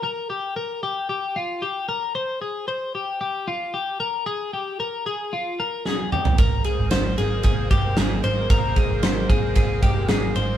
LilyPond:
<<
  \new Staff \with { instrumentName = "Clean electric guitar" } { \time 4/4 \key f \dorian \tempo 4 = 113 bes'8 g'8 bes'8 g'8 g'8 f'8 g'8 bes'8 | c''8 aes'8 c''8 g'8 g'8 f'8 g'8 bes'8 | aes'8 g'8 bes'8 aes'8 f'8 bes'8 aes'8 g'8 | bes'8 aes'8 c''8 aes'8 aes'8 g'8 aes'8 c''8 |
bes'8 aes'8 c''8 aes'8 aes'8 g'8 aes'8 c''8 | }
  \new Staff \with { instrumentName = "Analog synth pad" } { \time 4/4 \key f \dorian r1 | r1 | r1 | <aes bes c'>1~ |
<aes bes c'>1 | }
  \new Staff \with { instrumentName = "Picked electric bass" } { \clef bass \time 4/4 \key f \dorian r1 | r1 | r1 | aes,,8 r16 aes,,16 aes,,8 aes,,8 aes,,8 g,,8 aes,,8 aes,,8 |
aes,,8 r16 aes,,16 aes,,8 aes,,8 aes,,8 g,,8 aes,,8 aes,,8 | }
  \new DrumStaff \with { instrumentName = "Drums" } \drummode { \time 4/4 r4 r4 r4 r4 | r4 r4 r4 r4 | r4 r4 r4 sn8 toml16 tomfh16 | <bd cymr>8 cymr8 <cymr sn>8 cymr8 <bd cymr>8 <bd cymr>8 <cymr sn>8 cymr8 |
<bd cymr>8 <bd cymr>8 <cymr sn>8 <bd cymr>8 <bd cymr>8 <bd cymr>8 <cymr sn>8 cymr8 | }
>>